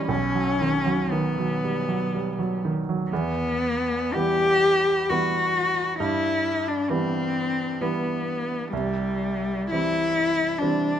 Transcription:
Already playing: E3 G3 A#3
0.07 B1 C#4
0.35 F#3
0.61 D#3
0.86 F#3
1.11 D#3 B3
1.38 F#3
1.64 G3
1.89 F#3
2.14 G3
2.39 F#3
2.65 D#3
2.89 F#3
3.11 E2 B3
4.14 E3 G3 B3 G4
5.09 E3 G3 B3 F#4
5.99 G2 E4
6.68 D4
6.90 E3 G3 B3 C4
7.81 E3 G3 B3
8.73 C2 G3
9.70 E3 G3 C4 E4
10.59 E3 G3 C4 D4

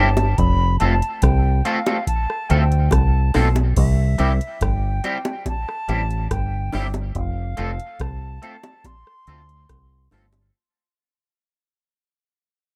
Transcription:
Already playing: G1 A5
0.17 muted clean electric guitar stroke, closed hi-hat, high bongo
0.38 F1 B5, kick, closed hi-hat
0.79 F1 A3 C4 F4 A4 A5, closed hi-hat
1.02 closed hi-hat
1.22 C2 G5, kick, cross-stick, closed hi-hat
1.65 A3 C4 F4 A4 F5, closed hi-hat
1.86 A3 C4 F4 A4, closed hi-hat, high bongo
2.07 A5, kick, closed hi-hat
2.30 cross-stick
2.49 D2 A3 C4 F4 A4 G5, closed hi-hat
2.72 closed hi-hat
2.91 C2 A5, kick, cross-stick, closed hi-hat, high bongo
3.34 B1 A3 C4 F4 A4, cross-stick, open hi-hat, low bongo
3.56 muted clean electric guitar stroke, closed hi-hat, high bongo
3.76 C2 E5, kick, closed hi-hat, crash
4.18 C2 G3 C4 E4 G4, closed hi-hat
4.41 closed hi-hat
4.61 G1 G5, kick, cross-stick, closed hi-hat
5.04 G3 C4 E4 G4, closed hi-hat
5.25 closed hi-hat, high bongo
5.46 A5, kick, closed hi-hat, high bongo
5.68 muted clean electric guitar stroke, cross-stick
5.88 A1 G3 C4 E4 G4, closed hi-hat
6.11 closed hi-hat
6.31 G1 G5, kick, cross-stick, closed hi-hat
6.73 G1 G3 C4 E4 G4, cross-stick, open hi-hat, low bongo
6.94 closed hi-hat, high bongo
7.15 F1 F5, kick, closed hi-hat
7.57 F1 A3 C4 F4 A4, closed hi-hat
7.80 closed hi-hat
8.00 C2 A5, kick, cross-stick, closed hi-hat
8.42 A3 C4 F4 A4, closed hi-hat
8.63 closed hi-hat, high bongo
8.84 C6, kick, closed hi-hat, high bongo
9.07 cross-stick
9.27 D2 A3 C4 F4 A4, closed hi-hat
9.49 closed hi-hat
9.69 C2, kick, cross-stick, closed hi-hat
10.11 G1 A3 C4 F4 A4, cross-stick, open hi-hat, low bongo
10.33 closed hi-hat, high bongo

